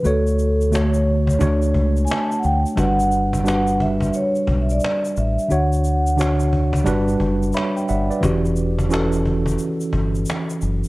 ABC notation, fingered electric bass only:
X:1
M:4/4
L:1/16
Q:"Swing 16ths" 1/4=88
K:Glyd
V:1 name="Fingered electric bass" clef=bass
D,,8 D,,2 C,,2 z2 D,, z | G,,,8 z2 B,,,2 z2 A,,, z | D,,8 G,,,2 F,,,2 z2 G,,, z | E,,,8 z2 G,,,2 z2 F,,, z |]